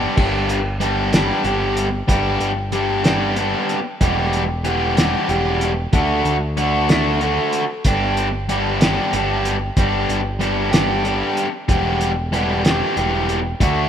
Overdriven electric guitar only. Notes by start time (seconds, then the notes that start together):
Already playing: G3 B3 D4 G4
0.17 G3 B3 D4 G4
0.80 G3 B3 D4 G4
1.13 G3 B3 D4 G4
1.44 G3 B3 D4 G4
2.08 G3 B3 D4 G4
2.72 G3 B3 D4 G4
3.04 G3 B3 D4 G4
3.36 G3 B3 D4 G4
4.01 E3 G3 B3 G4
4.64 E3 G3 B3 G4
4.96 E3 G3 B3 G4
5.28 E3 G3 B3 G4
5.93 D3 A3 D4 F#4
6.57 D3 A3 D4 F#4
6.89 D3 A3 D4 F#4
7.21 D3 A3 D4 F#4
7.85 G3 B3 D4 G4
8.49 G3 B3 D4 G4
8.81 G3 B3 D4 G4
9.13 G3 B3 D4 G4
9.77 G3 B3 D4 G4
10.40 G3 B3 D4 G4
10.72 G3 B3 D4 G4
11.05 G3 B3 D4 G4
11.68 E3 G3 B3 G4
12.32 E3 G3 B3 G4
12.65 E3 G3 B3 G4
12.97 E3 G3 B3 G4
13.60 D3 A3 D4 F#4